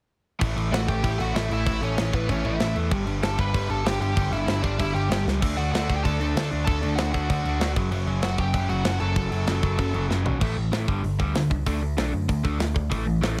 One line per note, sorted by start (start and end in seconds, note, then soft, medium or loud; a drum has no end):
0.39 0.56 A1 medium
0.39 0.57 A2 loud
0.39 0.56 E3 loud
0.39 0.56 A3 loud
0.39 kick loud
0.39 crash medium
0.56 0.71 A1 medium
0.56 0.71 A2 medium
0.56 0.71 E3 medium
0.56 0.72 A3 loud
0.56 crash medium
0.71 0.87 A1 medium
0.71 0.88 A2 medium
0.71 0.88 E3 medium
0.71 0.87 A3 loud
0.71 0.87 F#4 medium
0.71 0.89 F#5 medium
0.71 snare loud
0.71 crash medium
0.87 1.03 A1 medium
0.87 1.01 A2 medium
0.87 1.02 E3 medium
0.87 1.03 A3 medium
0.87 1.18 G4 medium
0.87 1.18 G5 medium
0.87 kick medium
0.87 crash medium
1.02 1.18 A1 loud
1.02 1.18 A2 loud
1.02 1.18 E3 loud
1.02 1.17 A3 loud
1.02 kick loud
1.02 crash medium
1.18 1.34 A1 medium
1.18 1.33 A2 medium
1.18 1.33 E3 medium
1.18 1.34 A3 loud
1.18 1.34 F#4 medium
1.18 1.36 F#5 loud
1.18 crash medium
1.34 1.49 A1 medium
1.34 1.50 A2 medium
1.34 1.50 E3 medium
1.34 1.49 A3 loud
1.34 1.50 E4 medium
1.34 1.52 E5 loud
1.34 snare loud
1.34 crash medium
1.50 1.65 A1 medium
1.50 1.64 A2 medium
1.50 1.64 E3 medium
1.50 1.65 A3 medium
1.50 1.80 E4 medium
1.50 1.84 E5 loud
1.50 crash medium
1.65 1.81 A1 loud
1.65 1.81 A2 loud
1.65 1.81 E3 loud
1.65 1.80 A3 loud
1.65 kick loud
1.65 crash medium
1.81 1.96 A1 medium
1.81 1.95 A2 medium
1.81 1.96 E3 loud
1.81 1.96 A3 loud
1.81 2.11 C#4 medium
1.81 2.15 C#5 loud
1.81 crash medium
1.96 2.13 A1 medium
1.96 2.12 A2 medium
1.96 2.12 E3 medium
1.96 2.11 A3 medium
1.96 snare loud
1.96 crash medium
2.13 2.28 A1 medium
2.13 2.27 A2 medium
2.13 2.27 E3 medium
2.13 2.28 A3 medium
2.13 2.28 B3 medium
2.13 2.30 B4 medium
2.13 kick medium
2.13 crash medium
2.28 2.44 A1 loud
2.28 2.44 A2 loud
2.28 2.43 E3 loud
2.28 2.42 A3 loud
2.28 2.44 C#4 medium
2.28 2.46 C#5 medium
2.28 kick medium
2.28 crash medium
2.43 2.59 A1 loud
2.43 2.59 A2 medium
2.43 2.59 E3 loud
2.43 2.60 A3 loud
2.43 2.74 E4 medium
2.43 2.75 E5 medium
2.43 crash medium
2.60 2.75 A1 medium
2.60 2.75 A2 medium
2.60 2.75 E3 medium
2.60 2.74 A3 loud
2.60 snare loud
2.60 crash medium
2.75 2.90 E2 medium
2.75 2.91 A2 medium
2.75 2.91 E3 medium
2.75 2.90 A3 medium
2.75 crash medium
2.91 3.05 G1 loud
2.91 3.07 G2 loud
2.91 3.06 D3 loud
2.91 3.06 G3 loud
2.91 kick loud
2.91 crash medium
3.06 3.21 G1 medium
3.06 3.22 G2 medium
3.06 3.21 D3 medium
3.06 3.22 G3 loud
3.06 crash medium
3.22 3.37 G1 medium
3.22 3.38 G2 medium
3.22 3.37 D3 medium
3.22 3.37 G3 loud
3.22 3.37 A4 medium
3.22 3.39 A5 loud
3.22 snare loud
3.22 crash medium
3.37 3.53 G1 loud
3.37 3.52 G2 medium
3.37 3.53 D3 medium
3.37 3.53 G3 medium
3.37 3.68 B4 medium
3.37 3.71 B5 loud
3.37 kick medium
3.37 crash medium
3.53 3.69 G1 loud
3.53 3.69 G2 loud
3.53 3.68 D3 loud
3.53 3.68 G3 loud
3.53 kick loud
3.53 crash medium
3.69 3.84 G1 medium
3.69 3.83 G2 medium
3.69 3.83 D3 medium
3.69 3.84 G3 medium
3.69 3.84 A4 medium
3.69 3.86 A5 medium
3.69 crash medium
3.84 4.00 G1 medium
3.84 4.00 G2 loud
3.84 3.99 D3 loud
3.84 3.99 G3 medium
3.84 4.00 G4 medium
3.84 4.00 G5 medium
3.84 snare loud
3.84 crash medium
4.00 4.16 G1 medium
4.00 4.13 G2 medium
4.00 4.14 D3 medium
4.00 4.15 G3 medium
4.00 4.30 G4 medium
4.00 4.32 G5 medium
4.00 crash medium
4.15 4.31 G1 loud
4.15 4.30 G2 loud
4.15 4.30 D3 loud
4.15 4.30 G3 loud
4.15 kick loud
4.15 crash medium
4.31 4.47 G1 loud
4.31 4.45 G2 medium
4.31 4.46 D3 medium
4.31 4.46 G3 loud
4.31 4.62 E4 medium
4.31 4.65 E5 medium
4.31 crash medium
4.46 4.62 G1 medium
4.46 4.62 G2 medium
4.46 4.61 D3 medium
4.46 4.61 G3 medium
4.46 snare loud
4.46 crash medium
4.62 4.78 G1 medium
4.62 4.77 G2 medium
4.62 4.78 D3 medium
4.62 4.78 G3 medium
4.62 4.78 D4 medium
4.62 4.79 D5 medium
4.62 kick medium
4.62 crash medium
4.78 4.94 G1 medium
4.78 4.93 G2 loud
4.78 4.93 D3 loud
4.78 4.93 G3 loud
4.78 4.94 E4 medium
4.78 4.94 E5 medium
4.78 kick medium
4.78 crash medium
4.94 5.09 G1 medium
4.94 5.08 G2 medium
4.94 5.09 D3 medium
4.94 5.09 G3 medium
4.94 5.24 G4 medium
4.94 5.24 G5 medium
4.94 crash medium
5.09 5.25 G1 medium
5.09 5.25 G2 loud
5.09 5.24 D3 medium
5.09 5.24 G3 loud
5.09 snare loud
5.09 crash medium
5.25 5.40 C#2 medium
5.25 5.40 G2 medium
5.25 5.40 D3 medium
5.25 5.40 G3 medium
5.25 snare medium
5.41 5.57 D2 loud
5.41 5.58 D3 medium
5.41 5.57 A3 loud
5.41 5.57 D4 loud
5.41 kick loud
5.41 crash loud
5.57 5.72 D2 medium
5.57 5.73 D3 medium
5.57 5.73 A3 medium
5.57 5.73 D4 loud
5.57 5.72 F#4 medium
5.57 5.71 F#5 medium
5.57 crash medium
5.72 5.87 D2 medium
5.72 5.89 D3 medium
5.72 5.89 A3 medium
5.72 5.88 D4 medium
5.72 5.95 F#4 medium
5.72 5.94 F#5 loud
5.72 snare loud
5.72 crash medium
5.89 6.04 D2 medium
5.89 6.03 D3 medium
5.89 6.05 A3 medium
5.89 6.04 D4 medium
5.89 kick medium
5.89 crash medium
5.96 6.05 G4 medium
5.96 6.03 G5 loud
6.03 6.19 D2 loud
6.03 6.20 D3 medium
6.03 6.20 A3 loud
6.03 6.19 D4 loud
6.03 6.49 A4 medium
6.03 6.47 A5 loud
6.03 kick medium
6.03 crash medium
6.20 6.34 D2 loud
6.20 6.34 D3 medium
6.20 6.35 A3 medium
6.20 6.35 D4 medium
6.20 crash medium
6.35 6.50 D2 medium
6.35 6.51 D3 medium
6.35 6.51 A3 medium
6.35 6.50 D4 medium
6.35 snare loud
6.35 crash medium
6.51 6.66 D2 medium
6.51 6.65 D3 medium
6.51 6.66 A3 medium
6.51 6.66 D4 loud
6.51 crash medium
6.65 6.81 D2 loud
6.65 6.82 D3 loud
6.65 6.82 A3 loud
6.65 6.81 D4 loud
6.65 6.96 A4 medium
6.65 6.95 A5 loud
6.65 kick loud
6.65 crash medium
6.82 6.97 D2 loud
6.82 6.96 D3 medium
6.82 6.98 A3 medium
6.82 6.98 D4 loud
6.82 crash medium
6.95 7.13 D2 medium
6.95 7.13 D3 medium
6.95 7.13 A3 loud
6.95 7.12 D4 loud
6.95 7.13 F#4 medium
6.95 7.11 F#5 medium
6.95 snare loud
6.95 crash medium
7.13 7.28 D2 medium
7.13 7.28 D3 medium
7.13 7.29 A3 medium
7.13 7.28 D4 medium
7.13 7.73 F#4 medium
7.13 7.71 F#5 medium
7.13 kick medium
7.13 crash medium
7.29 7.44 D2 loud
7.29 7.44 D3 loud
7.29 7.44 A3 loud
7.29 7.43 D4 loud
7.29 kick loud
7.29 crash medium
7.44 7.60 D2 medium
7.44 7.58 D3 medium
7.44 7.60 A3 medium
7.44 7.59 D4 loud
7.44 crash medium
7.60 7.75 D2 medium
7.60 7.75 D3 medium
7.60 7.77 A3 medium
7.60 7.75 D4 loud
7.60 snare loud
7.60 crash medium
7.76 7.90 F#1 medium
7.76 7.92 F#2 medium
7.76 7.91 C#3 loud
7.76 7.91 F#3 loud
7.76 kick loud
7.76 crash medium
7.91 8.06 F#1 loud
7.91 8.06 F#2 medium
7.91 8.06 C#3 loud
7.91 8.07 F#3 loud
7.91 crash medium
8.07 8.22 F#1 medium
8.07 8.23 F#2 loud
8.07 8.21 C#3 medium
8.07 8.22 F#3 loud
8.07 crash medium
8.22 8.37 F#1 medium
8.22 8.37 F#2 medium
8.22 8.36 C#3 medium
8.22 8.38 F#3 loud
8.22 8.38 F#4 medium
8.22 8.40 F#5 medium
8.22 snare loud
8.22 crash medium
8.37 8.53 F#1 medium
8.37 8.53 F#2 medium
8.37 8.53 C#3 medium
8.37 8.52 F#3 loud
8.37 8.67 G4 medium
8.37 8.69 G5 loud
8.37 kick medium
8.37 crash medium
8.53 8.68 F#1 medium
8.53 8.68 F#2 loud
8.53 8.68 C#3 loud
8.53 8.69 F#3 loud
8.53 kick loud
8.53 crash medium
8.69 8.84 F#1 loud
8.69 8.84 F#2 medium
8.69 8.84 C#3 medium
8.69 8.84 F#3 loud
8.69 8.98 F#4 medium
8.69 8.98 F#5 medium
8.69 crash medium
8.85 9.00 F#1 medium
8.85 8.99 F#2 medium
8.85 9.00 C#3 medium
8.85 9.01 F#3 loud
8.85 snare loud
8.85 crash medium
9.00 9.15 F#1 medium
9.00 9.16 F#2 medium
9.00 9.16 C#3 medium
9.00 9.15 F#3 medium
9.00 10.06 A4 medium
9.00 10.05 A5 loud
9.00 crash medium
9.16 9.30 F#1 loud
9.16 9.30 F#2 medium
9.16 9.30 C#3 loud
9.16 9.31 F#3 loud
9.16 kick loud
9.16 crash medium
9.31 9.46 F#1 medium
9.31 9.46 F#2 loud
9.31 9.46 C#3 medium
9.31 9.46 F#3 medium
9.31 crash medium
9.47 9.62 F#1 medium
9.47 9.61 F#2 medium
9.47 9.62 C#3 medium
9.47 9.62 F#3 loud
9.47 snare loud
9.47 crash medium
9.62 9.77 F#1 medium
9.62 9.78 F#2 medium
9.62 9.77 C#3 medium
9.62 9.77 F#3 loud
9.62 kick medium
9.62 crash medium
9.78 9.93 F#1 loud
9.78 9.93 F#2 medium
9.78 9.94 C#3 loud
9.78 9.94 F#3 loud
9.78 kick medium
9.78 crash medium
9.94 10.09 F#1 medium
9.94 10.10 F#2 medium
9.94 10.09 C#3 medium
9.94 10.09 F#3 loud
9.94 crash medium
10.10 10.25 F#1 medium
10.10 10.23 F#2 medium
10.10 10.24 C#3 medium
10.10 10.24 F#3 loud
10.10 snare medium
10.24 10.40 B1 medium
10.24 10.39 F#2 medium
10.24 10.40 C#3 medium
10.24 10.40 F#3 medium
10.24 floor tom medium
10.40 10.54 A1 loud
10.40 10.55 A2 medium
10.40 10.55 E3 loud
10.40 10.56 A3 loud
10.40 kick loud
10.40 crash loud
10.57 10.70 A1 medium
10.57 10.71 A2 medium
10.57 10.71 E3 medium
10.72 10.85 A1 medium
10.72 10.87 A2 loud
10.72 10.87 E3 medium
10.72 10.87 A3 loud
10.72 snare loud
10.72 open hi-hat medium
10.87 11.01 G1 medium
10.87 11.02 G2 medium
10.87 11.02 D3 medium
10.87 11.03 G3 medium
10.87 kick loud
11.03 11.17 G1 medium
11.03 11.17 G2 medium
11.03 11.18 D3 medium
11.03 open hi-hat medium
11.19 11.32 D2 medium
11.19 11.33 G2 medium
11.19 11.34 D3 loud
11.19 11.34 G3 loud
11.19 kick medium
11.35 11.48 D2 medium
11.35 11.49 G2 medium
11.35 11.49 D3 medium
11.35 snare loud
11.35 open hi-hat medium
11.50 11.64 C#2 medium
11.50 11.64 G2 medium
11.50 11.64 D3 medium
11.50 kick medium
11.66 11.79 D2 medium
11.66 11.81 D3 loud
11.66 11.81 A3 loud
11.66 11.81 D4 loud
11.66 kick loud
11.66 open hi-hat medium
11.82 11.94 D2 medium
11.82 11.96 D3 medium
11.82 11.96 A3 medium
11.97 12.10 B1 medium
11.97 12.12 D3 medium
11.97 12.12 A3 medium
11.97 12.12 D4 loud
11.97 snare loud
11.97 open hi-hat medium
12.13 12.26 F#2 medium
12.13 12.27 D3 medium
12.13 12.27 A3 medium
12.28 12.42 D2 loud
12.28 12.42 D3 medium
12.28 12.43 A3 medium
12.28 kick loud
12.28 open hi-hat medium
12.44 12.57 D2 medium
12.44 12.58 D3 medium
12.44 12.58 A3 loud
12.44 12.59 D4 medium
12.44 kick medium
12.59 12.92 D2 medium
12.59 12.73 D3 medium
12.59 12.74 A3 medium
12.59 snare loud
12.59 open hi-hat medium
12.75 12.89 D3 medium
12.75 12.89 A3 medium
12.75 kick medium
12.90 13.04 A1 loud
12.90 13.05 A2 medium
12.90 13.05 E3 loud
12.90 13.06 A3 loud
12.90 kick loud
12.90 open hi-hat medium
13.06 13.19 A1 medium
13.06 13.20 A2 medium
13.06 13.20 E3 medium
13.21 13.35 A1 medium
13.21 13.36 A2 loud
13.21 13.37 E3 loud
13.21 13.37 A3 medium
13.21 snare medium
13.21 open hi-hat soft